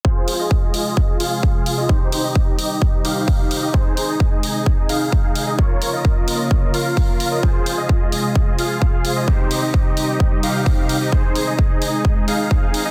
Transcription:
0.05 analog synth pad C3 G#3 F4 C5, supersaw synth F4 G#4 C5, kick
0.28 open hi-hat
0.39 supersaw synth F4 G#4 D#5
0.51 kick
0.74 open hi-hat
0.97 kick
1.20 supersaw synth F4 G#4 F5, open hi-hat
1.43 kick
1.55 supersaw synth F4 G#4 F5
1.66 open hi-hat
1.78 supersaw synth F4 G#4 D#5
1.89 analog synth pad G3 D#4 C5, supersaw synth D#4 G4 C5, kick
2.12 open hi-hat
2.24 supersaw synth D#4 G4 D#5
2.35 kick
2.59 open hi-hat
2.82 kick
3.05 supersaw synth D#4 G4 F5, open hi-hat
3.28 kick, open hi-hat
3.39 supersaw synth D#4 G4 F5
3.51 open hi-hat
3.62 supersaw synth D#4 G4 D#5
3.74 analog synth pad C3 G#3, supersaw synth D#4 G#4 C5, kick
3.97 open hi-hat
4.08 supersaw synth D#4 G#4 D#5
4.20 kick
4.43 open hi-hat
4.66 kick
4.89 supersaw synth D#4 G#4 F5, open hi-hat
5.12 kick
5.24 supersaw synth D#4 G#4 F5
5.35 open hi-hat
5.47 supersaw synth D#4 G#4 D#5
5.58 analog synth pad C#3 A#3 F4 C#5, supersaw synth F4 A#4 C#5, kick
5.82 open hi-hat
5.93 supersaw synth F4 A#4 D#5
6.05 kick
6.28 open hi-hat
6.51 kick
6.74 supersaw synth F4 A#4 F5, open hi-hat
6.97 kick, open hi-hat
7.08 supersaw synth F4 A#4 F5
7.20 open hi-hat
7.32 supersaw synth F4 A#4 D#5
7.43 analog synth pad C3 G#3 C5, supersaw synth F4 G#4 C5, kick
7.66 open hi-hat
7.78 supersaw synth F4 G#4 D#5
7.89 kick
8.12 open hi-hat
8.35 kick
8.59 supersaw synth F4 G#4 F5, open hi-hat
8.82 kick
8.93 supersaw synth F4 G#4 F5
9.05 open hi-hat
9.16 supersaw synth F4 G#4 D#5
9.28 analog synth pad G3 D#4, supersaw synth D#4 G4 C5, kick
9.51 open hi-hat
9.62 supersaw synth D#4 G4 D#5
9.74 kick
9.97 open hi-hat
10.20 kick
10.43 supersaw synth D#4 G4 F5, open hi-hat
10.66 kick, open hi-hat
10.78 supersaw synth D#4 G4 F5
10.89 open hi-hat
11.01 supersaw synth D#4 G4 D#5
11.12 analog synth pad G#3 D#4, supersaw synth D#4 G#4 C5, kick
11.35 open hi-hat
11.47 supersaw synth D#4 G#4 D#5
11.59 kick
11.82 open hi-hat
12.05 kick
12.28 supersaw synth D#4 G#4 F5, open hi-hat
12.51 kick
12.63 supersaw synth D#4 G#4 F5
12.74 open hi-hat
12.85 supersaw synth D#4 G#4 D#5

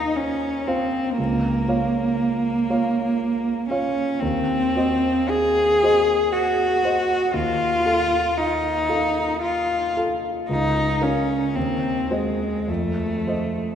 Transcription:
Already playing: grand piano D#2 F4 C5 F5, cello D#4
0.16 cello C#4
0.67 cello C4, grand piano F4 C5 F5
1.18 grand piano C#2, cello A#3
1.68 grand piano F4 C#5 F5
2.70 grand piano F4 C#5 F5
3.69 cello C#4, grand piano F4 C#5 F5
4.21 grand piano D#2, cello C4
4.76 grand piano F#4 C5 D#5
5.29 cello G#4
5.83 grand piano F#4 C5 D#5
6.33 cello F#4
6.84 grand piano F#4 C5 D#5
7.34 grand piano D#2, cello F4
7.85 grand piano F4 A4 F5
8.38 cello D#4
8.89 grand piano F4 A4 F5
9.42 cello F4
9.97 grand piano F4 A4 F5
10.49 grand piano C#2, cello D#4
11.01 cello C#4, grand piano F4 A#4 F5
11.55 grand piano D#2, cello C4
12.10 cello G#3, grand piano F#4 C5 D#5
12.68 grand piano F2, cello A3
13.27 grand piano F4 C5 D#5

